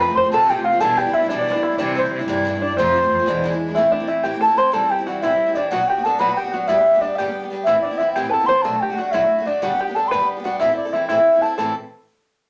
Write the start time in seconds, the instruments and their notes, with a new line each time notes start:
Already playing: cello F2
0.00 steel-string acoustic guitar A3 C4 F4, five-string banjo B4, flute B5
0.08 steel-string acoustic guitar F3 A3 C4 F4
0.15 cello F2, five-string banjo C5, flute C6
0.23 steel-string acoustic guitar F3 A3 C4 F4
0.31 steel-string acoustic guitar F2 C3 F3 A3 C4 F4, cello C3, five-string banjo A4, flute A5
0.49 steel-string acoustic guitar F3 A3 C4 F4, five-string banjo G4, flute G5
0.58 steel-string acoustic guitar F3 A3 C4 F4
0.64 five-string banjo F4, flute F5
0.72 steel-string acoustic guitar F3 A3 C4 F4
0.80 steel-string acoustic guitar B2 E3 G3 D4 E4, cello B2, five-string banjo A4, flute A5
0.97 steel-string acoustic guitar E3 G3 D4 E4, five-string banjo G4, flute G5
1.06 steel-string acoustic guitar G3 D4 E4
1.13 cello B2, five-string banjo E4, flute E5
1.22 steel-string acoustic guitar G3 D4 E4
1.29 cello B2, steel-string acoustic guitar B2 E3 G3 D4 E4, five-string banjo D4, flute D5
1.41 five-string banjo D4
1.48 steel-string acoustic guitar E3 G3 D4 E4
1.52 five-string banjo D4, steel-string acoustic guitar E4
1.56 steel-string acoustic guitar G3 D4
1.63 five-string banjo E4
1.71 steel-string acoustic guitar G3 D4 E4
1.78 steel-string acoustic guitar C3 E3 G3 D4 E4, cello C3, five-string banjo D4, flute D5
1.95 steel-string acoustic guitar E3 G3 D4 E4, five-string banjo C4, flute C5
2.03 steel-string acoustic guitar G3 D4 E4
2.12 cello C3
2.19 steel-string acoustic guitar G3 D4 E4
2.28 cello G2, steel-string acoustic guitar C3 E3 G3 D4 E4
2.45 steel-string acoustic guitar E3 G3 D4 E4
2.53 steel-string acoustic guitar G3 D4 E4
2.61 five-string banjo D4, flute D5
2.69 steel-string acoustic guitar G3 D4 E4
2.77 cello F2, steel-string acoustic guitar F2 C3 F3 A3 C4 F4, five-string banjo C4, flute C5
2.94 steel-string acoustic guitar F3 A3 C4 F4
3.02 steel-string acoustic guitar F3 A3 C4 F4
3.10 cello F2
3.19 steel-string acoustic guitar F3 A3 C4 F4
3.26 cello E2, steel-string acoustic guitar E2 B2 E3 G#3 D4 E4
3.44 steel-string acoustic guitar E3 G#3 D4 E4
3.52 steel-string acoustic guitar E3 G#3 D4 E4
3.68 steel-string acoustic guitar E3 G#3 D4 E4
3.75 steel-string acoustic guitar A2 E3 A3 C4 E4, five-string banjo E4, flute E5
3.83 steel-string acoustic guitar A3 C4 E4
3.92 five-string banjo D4, flute D5
4.00 steel-string acoustic guitar A3 C4 E4
4.07 steel-string acoustic guitar E3 A3 C4 E4, five-string banjo E4, flute E5
4.23 steel-string acoustic guitar A2 E3 A3 C4 E4, five-string banjo G4, flute G5
4.33 steel-string acoustic guitar A3 C4 E4
4.41 five-string banjo A4, flute A5
4.48 steel-string acoustic guitar A3 C4 E4
4.57 steel-string acoustic guitar E3 A3 C4 E4, five-string banjo C5, flute C6
4.72 steel-string acoustic guitar C3 E3 G3 C4 E4, five-string banjo A4, flute A5
4.81 steel-string acoustic guitar G3 C4 E4
4.90 five-string banjo G4, flute G5
4.99 steel-string acoustic guitar G3 C4 E4
5.06 steel-string acoustic guitar E3 G3 C4 E4, five-string banjo F#4, flute F#5
5.22 steel-string acoustic guitar C3 E3 G3 C4 E4, five-string banjo E4, flute E5
5.31 steel-string acoustic guitar G3 C4 E4
5.46 steel-string acoustic guitar G3 C4 E4
5.55 steel-string acoustic guitar E3 G3 C4 E4, five-string banjo D4, flute D5
5.70 steel-string acoustic guitar B2 F#3 B3 D4 F#4, five-string banjo F#4, flute F#5
5.80 steel-string acoustic guitar B3 D4 F#4
5.88 five-string banjo G4, flute G5
5.97 steel-string acoustic guitar B3 D4 F#4
6.04 steel-string acoustic guitar F#3 B3 D4 F#4, five-string banjo A4, flute A5
6.19 steel-string acoustic guitar B2 F#3 B3 D4 F#4, five-string banjo B4, flute B5
6.28 steel-string acoustic guitar B3 D4 F#4
6.36 five-string banjo G4, flute G5
6.44 steel-string acoustic guitar B3 D4 F#4
6.52 steel-string acoustic guitar F#3 B3 D4 F#4, five-string banjo F#4, flute F#5
6.67 steel-string acoustic guitar G2 D3 G3 B3 D4 G4, five-string banjo E4, flute E5
6.77 steel-string acoustic guitar G3 B3 D4 G4
6.94 steel-string acoustic guitar G3 B3 D4 G4
7.01 steel-string acoustic guitar G3 B3 D4, five-string banjo D4, flute D5
7.05 steel-string acoustic guitar G4
7.16 steel-string acoustic guitar G2 D3 G3 B3 D4 G4, five-string banjo G4, flute G5
7.27 steel-string acoustic guitar G3 B3 D4 G4
7.43 steel-string acoustic guitar G3 B3 D4 G4
7.50 steel-string acoustic guitar G3 B3 D4 G4
7.64 steel-string acoustic guitar A2 E3 C4, five-string banjo E4, flute E5
7.68 steel-string acoustic guitar B3 E4
7.74 steel-string acoustic guitar B3 C4 E4
7.82 five-string banjo D4, flute D5
7.91 steel-string acoustic guitar B3 C4 E4
7.98 steel-string acoustic guitar E3 B3 C4, five-string banjo E4, flute E5
8.02 steel-string acoustic guitar E4
8.13 steel-string acoustic guitar A2 E3, five-string banjo G4, flute G5
8.17 steel-string acoustic guitar B3 C4 E4
8.25 steel-string acoustic guitar B3 C4 E4
8.29 five-string banjo B4, flute A5
8.33 five-string banjo A4
8.41 steel-string acoustic guitar B3 C4 E4
8.46 steel-string acoustic guitar E3 B3 C4, five-string banjo C5, flute C6
8.50 steel-string acoustic guitar E4
8.62 steel-string acoustic guitar B2 F#3 A3 D4, five-string banjo A4, flute A5
8.66 steel-string acoustic guitar F#4
8.72 steel-string acoustic guitar A3 D4 F#4
8.80 five-string banjo G4, flute G5
8.90 steel-string acoustic guitar A3 D4 F#4
8.97 steel-string acoustic guitar F#3 A3 D4, five-string banjo F#4, flute F#5
9.01 steel-string acoustic guitar F#4
9.11 steel-string acoustic guitar B2 F#3 A3 D4 F#4, five-string banjo E4, flute E5
9.22 steel-string acoustic guitar A3 D4 F#4
9.39 steel-string acoustic guitar A3 D4 F#4
9.46 steel-string acoustic guitar F#3 A3 D4 F#4, five-string banjo D4, flute D5
9.62 steel-string acoustic guitar G2 D3 G3 B3 D4 G4, five-string banjo F#4, flute F#5
9.71 steel-string acoustic guitar G3 B3 D4 G4
9.80 five-string banjo G4, flute G5
9.88 steel-string acoustic guitar G3 B3 D4 G4
9.95 steel-string acoustic guitar G3 B3 D4, five-string banjo A4, flute A5
9.99 steel-string acoustic guitar G4
10.08 steel-string acoustic guitar G2, five-string banjo B4, flute B5 C6
10.12 steel-string acoustic guitar D3 G3 B3 D4 G4
10.20 steel-string acoustic guitar G3 B3 D4 G4
10.37 steel-string acoustic guitar G3 B3 D4 G4
10.44 steel-string acoustic guitar G3 B3 D4 G4, five-string banjo F#4, flute F#5
10.60 steel-string acoustic guitar A2 E3 C4 E4 A4, five-string banjo E4, flute E5
10.69 steel-string acoustic guitar C4 E4 A4
10.77 flute D5
10.85 steel-string acoustic guitar C4 E4 A4
10.93 steel-string acoustic guitar E3 C4 E4 A4, five-string banjo E4, flute E5
11.08 steel-string acoustic guitar A2 E3 C4 E4 A4, five-string banjo E4, flute E5
11.17 steel-string acoustic guitar C4 E4 A4
11.34 steel-string acoustic guitar C4 E4 A4
11.42 steel-string acoustic guitar E3 C4 E4 A4, five-string banjo A4, flute A5
11.58 steel-string acoustic guitar A2 E3 C4 E4 A4, five-string banjo A4, flute A5